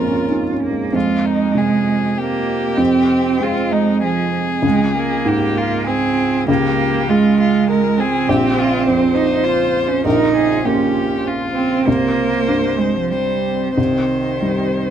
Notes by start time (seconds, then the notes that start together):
Already playing: A#1 F2 G#3 A#3 C#4 F4 A#4
0.09 C#4
0.30 D#4
0.52 C#4
0.63 A#3
0.71 G#3
0.92 F2 G#3 C4 F4 D#5
1.26 D#4
1.55 C3 G#4
2.18 A#3 G4
2.77 F2 C4
3.40 G#3 F4
3.71 G#3 D#4
4.02 F3 G#4
4.62 C#2 C#3 G#3 F4 F5
4.96 A#3
5.25 G#2 G4
5.57 F4
5.87 C4 G#4
6.48 C#2 A#3 G4
7.08 G#3 F4
7.40 F4
7.70 A#4
7.98 C4 G#4
8.28 A#1 C#3 F4 G4 C5
8.59 F4
8.88 F2 C5
9.15 D#4
9.44 F4
9.88 C#4
10.03 A#1 D#4 A#4
10.36 G#4
10.65 A#3 C#4 G4
11.26 F4
11.55 C4
11.86 C2 A#3 C4 G4 C5
12.48 G2
12.79 G#3
12.96 F3
13.11 G3 C5
13.77 C2 D#3 C5
14.42 G3